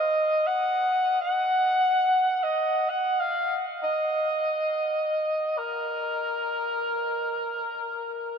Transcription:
Already playing: D#5
0.47 F#5
1.21 F#5
2.43 D#5
2.89 F#5
3.20 F5
3.83 D#5
5.58 A#4

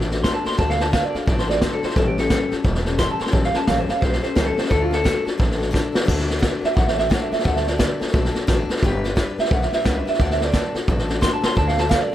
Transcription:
Already playing: A1 A3 D4 F#4
0.01 snare
0.10 D4 F#4 A4, snare
0.23 D3 A3 D4 F#4 A4 C6, kick, snare, hi-hat pedal
0.34 A5
0.44 D4 F#4 A4 C6, muted upright bass stroke, snare
0.52 snare
0.57 D2 D3 A3 D4 F#4 A4 A5, kick, snare
0.70 F5, snare
0.78 D4 F#4 A4 A5, snare
0.92 D3 A3 D4 F#4 A4 F5, kick, snare, hi-hat pedal
1.04 D5
1.14 D4 F#4 A4 F5, muted upright bass stroke, snare
1.26 A1 A3 D4 F#4 A4 D5, kick, snare
1.38 C5, snare
1.48 D4 F#4 A4 D5, snare
1.61 D3 A3 D4 F#4 A4 C5, kick, snare, hi-hat pedal
1.73 A4
1.83 D4 F#4 A4 C5, muted upright bass stroke, snare
1.90 snare
1.96 A1 A2 E3 G3 C#4 G4 A4, kick, snare
2.07 G4
2.17 G3 C#4 G4 A4, snare
2.29 A2 E3 G3 C#4 G4 A4, kick, snare, hi-hat pedal
2.51 G3 C#4 G4 A4, muted upright bass stroke, snare
2.64 E1 G3 C#4 G4 A4, kick, snare
2.75 snare
2.85 G3 C#4 G4 A4, snare
2.98 A2 E3 G3 C#4 G4 A4 C6, kick, snare, hi-hat pedal
3.11 A5
3.19 G3 C#4 G4 A4 C6, muted upright bass stroke, snare
3.26 snare
3.32 A1 A2 E3 G3 C#4 G4 A4 A5, kick, snare
3.43 F5, snare
3.53 G3 C#4 G4 A4 A5, muted upright bass stroke, snare
3.67 A1 A2 E3 G3 C#4 G4 A4 F5, kick, snare, hi-hat pedal
3.79 C5
3.88 G3 C#4 G4 A4 F5, muted upright bass stroke, snare
4.01 B1 G3 C#4 G4 A4 C5, kick, snare
4.12 C5, snare
4.22 G3 C#4 G4 A4 C5, muted upright bass stroke, snare
4.35 C#2 A2 E3 G3 C#4 G4 A4 C5, kick, snare, hi-hat pedal
4.47 A4
4.56 G3 C#4 G4 A4 C5, muted upright bass stroke, snare
4.64 snare
4.70 D2 D3 A3 D4 F#4 A4, kick, snare
4.82 F4
4.91 D4 F#4 A4, snare
5.04 D3 A3 D4 F#4 A4, kick, snare, hi-hat pedal
5.25 D4 F#4 A4, muted upright bass stroke, snare
5.37 A1 A3 D4 F#4 A4, kick, snare
5.51 snare
5.57 D4 F#4 A4, snare
5.71 D3 A3 D4 F#4 A4, kick, snare, hi-hat pedal
5.92 D4 F#4 A4, muted upright bass stroke, snare
6.05 D2 D3 A3 D4 F#4 A4, kick, snare, crash
6.19 snare
6.27 D4 F#4 A4, snare
6.39 D3 A3 D4 F#4 A4, kick, snare, hi-hat pedal
6.61 D4 F#4 A4, muted upright bass stroke, snare
6.65 E5
6.74 A1 A3 D4 F#4 A4 F#5, kick, snare
6.87 E5, snare
6.96 D4 F#4 A4 E5, snare
7.09 D3 A3 D4 F#4 A4 F#5, kick, snare, hi-hat pedal
7.22 E5
7.31 D4 F#4 A4 E5, muted upright bass stroke, snare
7.39 snare
7.43 D2 D3 A3 D4 F#4 A4 F#5, kick, snare
7.55 E5, snare
7.65 D4 F#4 A4 D5, snare
7.78 D3 A3 D4 F#4 A4, kick, snare, hi-hat pedal
7.99 D4 F#4 A4, muted upright bass stroke, snare
8.08 snare
8.12 B1 A3 D4 F#4 A4, kick, snare
8.25 snare
8.32 D4 F#4 A4, muted upright bass stroke, snare
8.47 A1 D3 A3 D4 F#4 A4, kick, snare, hi-hat pedal
8.69 D4 F#4 A4, muted upright bass stroke, snare
8.77 snare
8.82 G1 G3 D4 G4 B4, kick, snare
9.04 D4 G4 B4, snare
9.16 G3 D4 G4 B4, kick, snare, hi-hat pedal
9.38 D4 G4 B4 E5, muted upright bass stroke, snare
9.45 snare
9.50 B1 G3 D4 G4 B4 F#5, kick, snare
9.62 E5, snare
9.71 D4 G4 B4 E5, muted upright bass stroke, snare
9.84 C#2 G3 D4 G4 B4 F#5, kick, snare, hi-hat pedal
9.97 E5
10.05 D4 G4 B4 E5, muted upright bass stroke, snare
10.14 snare
10.19 D2 D3 A3 D4 F#4 A4 F#5, kick, snare
10.30 E5, snare
10.40 D4 F#4 A4 D5, snare
10.52 D3 A3 D4 F#4 A4, kick, snare, hi-hat pedal
10.74 D4 F#4 A4, muted upright bass stroke, snare
10.87 A1 A3 D4 F#4 A4, kick, snare
10.99 snare
11.08 D4 F#4 A4, snare
11.21 D3 A3 D4 F#4 A4 C6, kick, snare, hi-hat pedal
11.33 A5
11.42 D4 F#4 A4 C6, muted upright bass stroke, snare
11.55 D2 D3 A3 D4 F#4 A4 A5, kick, snare
11.68 F5, snare
11.77 D4 F#4 A4 A5, snare
11.89 D3 A3 D4 F#4 A4 F5, kick, snare, hi-hat pedal
12.02 D5
12.10 F#4 A4

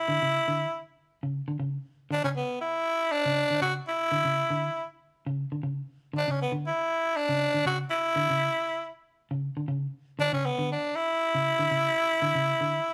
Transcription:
Already playing: E4
0.08 D3
0.22 C#3
0.48 D3
1.23 C#3
1.48 D3
1.59 C#3
2.10 D3 D4
2.24 C#3 C#4
2.36 B3
2.61 E4
3.12 D4
3.26 C#3
3.50 D3
3.61 C#3 F#4
3.88 E4
4.12 D3
4.25 C#3
4.50 D3
5.27 C#3
5.52 D3
5.63 C#3
6.13 D3
6.18 D4
6.28 C#3 C#4
6.42 B3
6.52 D3
6.66 E4
7.17 D4
7.29 C#3
7.54 D3
7.66 C#3 F#4
7.91 E4
8.16 D3
8.30 C#3
9.31 C#3
9.57 D3
9.68 C#3
10.19 D3 D4
10.33 C#3 C#4
10.46 B3
10.59 D3
10.72 D4
10.96 E4
11.35 C#3
11.59 D3
11.71 C#3
12.22 D3
12.35 C#3
12.61 D3

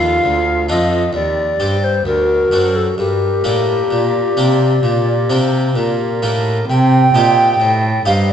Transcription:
Already playing: D#2 A3 D4 F4 F5
0.24 D2
0.69 F2 A3 D4 F4 D#5
1.13 D#2 G4 D5
1.60 G2 C4 G4
1.84 C5
2.05 D2 F#4 A#4
2.52 F#2 C4 D4 F#4
2.76 A4
2.98 G2 G4 A#4
3.44 A2 A#3 D4 G4
3.91 A#2 D5
4.37 C3 A#3 D4 G4
4.83 A#2
5.30 C3 A#3 D4 G4 C5
5.76 A#2 A#4
6.22 A2 A#3 D4 G4
6.69 C3 G5
7.14 A#2 C4 D#4 G4
7.60 A2
8.06 G2 C4 D#4 G4 F5
8.29 D5

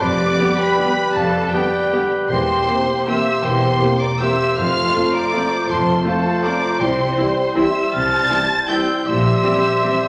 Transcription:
0.01 F1 F2 G3 G4 B4 D5 B5 D6
0.37 D3 G3 B3 G4
0.57 B4 G5 B5
0.77 D3 G3 B3 G4
1.14 F1 F2 A4 F5 A5
1.52 D3 G3 B3 G4 B4 D5 G5
1.92 D3 G3 B3 G4
2.30 E1 E2 A#3 G4 C5 G5 C6
2.67 E3 A#3 C4 G4
3.07 E3 A#3 C4 G4 C5 E5 C6 E6
3.42 E1 E2 A#3 G4 C5 G5 C6
3.80 E3 A#3 C4 G4
4.00 D5 A#5 D6
4.19 E3 A#3 C4 G4 C5 E5 C6 E6
4.57 F1 F2 A3 F4 C5 F5 C6 F6
4.93 F3 A3 C4 F4
5.14 D5 A#5 D6
5.33 F3 A3 C4 F4
5.68 F1 F2 A3 F4 C5 A5 C6
6.05 F3 A3 C4 F4 A4 C5 F5 A5
6.43 F3 A3 C4 F4 D5 A#5 D6
6.80 C2 C3 G3 E4 C5 G5 C6
7.17 E3 G3 C4 E4 G4
7.55 E3 G3 C4 E4 G4 C5 E5 C6 E6
7.92 C2 C3 A5 F6 A6
8.30 E3 G3 C4 E4 G4
8.68 E3 G3 C4 E4 C5 G5 E6 G6
8.72 C4 G4
9.06 A#1 A#2 G3 G4 C5 E5 C6 E6
9.43 E3 G3 C4 G4
9.82 E3 G3 C4 G4

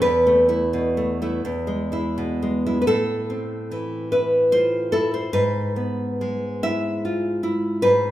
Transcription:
0.02 E2 B4
0.27 A3
0.49 A3 E4
0.73 B2
0.97 A3
1.22 A3 E4
1.45 E2
1.67 G#3
1.92 G#3 E4
2.18 B2
2.42 G#3
2.66 G#3 E4
2.82 B4
2.87 A2 A4
3.30 C4
3.71 E3
4.12 E4 B4
4.52 F4 C5
4.92 E4 A4
5.14 C5
5.33 G#2 B4
5.76 B3
6.21 G#3
6.63 E4 E5
7.05 F4
7.43 E4
7.82 G#2 B4

